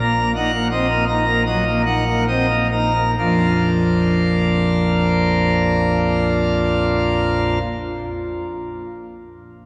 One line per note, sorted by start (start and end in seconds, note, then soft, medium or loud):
0.00 3.14 A#1 medium
0.00 3.14 A#2 medium
0.00 0.31 A#5 loud
0.17 0.33 A#3 medium
0.36 0.51 D#4 medium
0.36 0.68 F#5 medium
0.53 0.69 A#3 medium
0.71 0.87 C4 medium
0.71 1.04 D#5 medium
0.89 1.06 A#3 medium
1.08 1.25 D#4 medium
1.08 1.42 A#5 medium
1.27 1.44 A#3 medium
1.46 1.64 F#3 medium
1.46 1.82 D#5 medium
1.65 1.84 A#3 medium
1.85 2.04 D#4 medium
1.85 2.23 F#5 medium
2.07 2.26 A#3 medium
2.27 2.46 C4 medium
2.27 2.67 D#5 medium
2.49 2.70 A#3 medium
2.72 2.93 D#4 medium
2.72 3.11 A#5 medium
2.95 3.15 A#3 medium
3.18 7.59 A#1 medium
3.18 7.58 F2 medium
3.18 7.59 F3 medium
3.18 7.59 A#3 medium
3.18 7.59 D4 medium
3.18 7.59 F4 medium